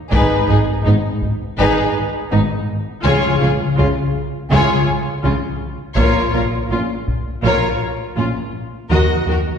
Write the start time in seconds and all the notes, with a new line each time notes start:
0.11 G#1 G#2 D#4 G#4 B4, taiko
0.48 G#1 G#2 D#4 G#4
0.84 G#1 G#2 B3 D#4
1.22 taiko
1.58 G#1 G#2 D#4 G#4 B4
2.31 G#1 G#2 B3 D#4
3.04 C#2 C#3 F4 G#4 C#5
3.40 C#2 C#3 F4 G#4
3.77 C#2 C#3 C#4 F4
4.51 C#2 C#3 F4 G#4 C#5
5.24 C#2 C#3 C#4 F4
5.97 A#1 A#2 F4 A#4 C#5, taiko
6.34 A#1 A#2 F4 A#4
6.70 A#1 A#2 C#4 F4
7.08 taiko
7.43 A#1 A#2 F4 A#4 C#5
8.16 A#1 A#2 C#4 F4
8.90 D#2 D#3 F#4 A#4 D#5
9.27 D#2 D#3 F#4 A#4